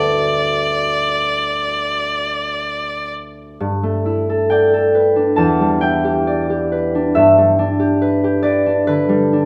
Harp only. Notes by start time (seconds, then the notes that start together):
Already playing: D2 A3 D4 F#4 B4
3.60 G2
3.83 A3
4.06 E4
4.29 A4
4.50 D5 G5
4.74 A4
4.95 B4
5.16 D4
5.36 E2 A5
5.61 G3
5.81 E4 G5
6.05 G4
6.27 D5
6.50 G4
6.72 B4
6.95 D4
7.15 G2 E5
7.38 G3
7.59 D4
7.79 G4
8.02 B4
8.24 G4
8.43 B4 D5
8.66 D4
8.87 D3 B4
9.09 G3
9.33 D4